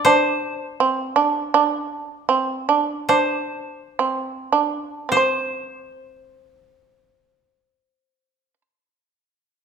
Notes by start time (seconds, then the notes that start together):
Already playing: D5
0.05 D4 C5
0.80 C4
1.16 D4
1.54 D4
2.29 C4
2.69 D4
3.09 D4 C5
3.99 C4
4.52 D4
5.09 C4 G4 C5
5.17 C5